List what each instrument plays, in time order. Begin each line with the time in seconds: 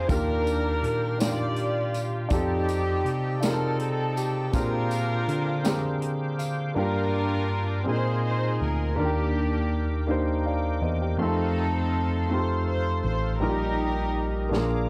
Already playing: grand piano C4 D4 F4 G#4 A#4
0.08 tine electric piano D#2, grand piano D#3 A#3 D4 F4 G4 A#4, string section D4 A#4, alto saxophone A#4, tonewheel organ F5 G5, kick, closed hi-hat, tambourine
0.12 string section G4
0.47 closed hi-hat, tambourine
0.83 tine electric piano A#2, closed hi-hat
1.18 grand piano D4 D#4 F4 G4, alto saxophone D5, string section D5, snare, closed hi-hat, tambourine
1.22 string section F4 G4, grand piano A#4
1.56 closed hi-hat
1.94 closed hi-hat, tambourine
2.29 tine electric piano F2, grand piano D#4 F4 G4 A4 D5, alto saxophone G4, tonewheel organ A5, kick, closed hi-hat, tambourine
2.33 string section C4 D#4 G4
2.68 closed hi-hat, tambourine
3.05 tine electric piano C3, closed hi-hat
3.41 string section C4 D#4 A4, grand piano D#4 F4 G4 G#4 D5, alto saxophone A#4, snare, closed hi-hat, tambourine
3.51 grand piano A5
3.79 alto saxophone A4, closed hi-hat
4.17 alto saxophone G4, closed hi-hat, tambourine
4.52 tine electric piano A#2, grand piano A#2 C4 D4 G4 G#4 A#4, string section D4 F4 A#4, alto saxophone F4, tonewheel organ C5 F5 D6, kick, closed hi-hat, tambourine
4.91 closed hi-hat, tambourine
5.28 tine electric piano D3, closed hi-hat
5.63 grand piano C4 D4 G4 G#4 A#4, snare, closed hi-hat, tambourine
6.01 grand piano A#5, closed hi-hat
6.39 grand piano F5, closed hi-hat, tambourine
6.74 tine electric piano G2, grand piano G2 A#3 D4 F4 G4 A#4, string section D4 F4 A#4, tonewheel organ A#4 F5 G5 D6
7.84 grand piano A#2 C4 D4 F4 G#4 A#4, tine electric piano A#2
7.88 string section D#4 G#4 C5, grand piano D#4, tonewheel organ G#5 C6
8.25 string section C5
8.61 tine electric piano D2, string section A#4
8.96 tine electric piano D#2, grand piano D#3 A#3 D4 F4, string section A#3 D4 G4, tonewheel organ A#4 G5 D6
9.00 grand piano A#4
9.05 grand piano G4
10.07 grand piano A#3 D4 D#4 G4 C5
10.46 grand piano D5 F5
10.82 tine electric piano E2, grand piano C5 D#5
11.02 grand piano G4 A#4
11.18 tine electric piano F2, grand piano A3 C4 D#4, string section C4 D#4, tonewheel organ A4 F5 C6
11.22 grand piano F4 A4, string section A4
12.29 grand piano A3 C4 D#4 F4 G4, string section C5
12.39 grand piano A4
12.68 string section C5
13.04 tine electric piano A1, string section C5
13.40 tine electric piano A#1, grand piano A#2 G3 A#3 D#4 F4 A#4, string section D#4 G4 A#4, tonewheel organ G4 D#5 A#5
13.49 grand piano G4
14.49 tine electric piano A#1, grand piano A#2 A#3 D4 F4 G#4, tonewheel organ G#4 D6, snare
14.53 grand piano A#4, tonewheel organ F5